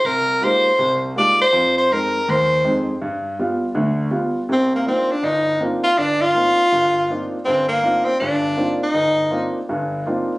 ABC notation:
X:1
M:4/4
L:1/8
Q:"Swing" 1/4=162
K:Gphr
V:1 name="Tenor saxophone"
B2 c3 z d c- | c c B2 c3 z | z8 | [K:Cm] C B, C D E2 z F |
D F6 z | C B,2 C D3 E- | E3 z4 z |]
V:2 name="Grand piano"
C,,2 [A,B,EFG] z [C,,C,]2 [A,B,EFG] z | [F,,F,]2 [F,,A,CE] z E,,2 [F,,A,CE] z | G,,2 [G,=B,F] z [D,,D,]2 [G,B,F] z | [K:Cm] [C,,C,]2 [B,CDEF] z G,,,2 [B,CDEF] z |
G,,,2 [B,CDEF] z [G,,,G,,]2 [B,CDEF] z | [G,,,G,,]2 [B,CDEF] z [G,,,G,,]2 [B,CDEF] z | G,,,2 [B,CDEF] z [G,,,G,,]2 [B,CDEF] z |]